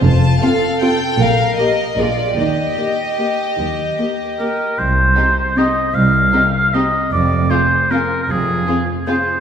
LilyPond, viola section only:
\new Staff \with { instrumentName = "Viola section" } { \time 3/4 \key ees \major \tempo 4 = 152 r4 <c' f'>4 <c' f'>4 | r4 <bes g'>4 <bes aes'>4 | r4 <bes g'>4 <bes g'>4 | r4 <bes g'>4 <bes g'>4 |
\key c \minor r4 c'4 c'4 | r4 c'4 c'4 | r4 c'4 c'4 | r4 c'4 c'4 | }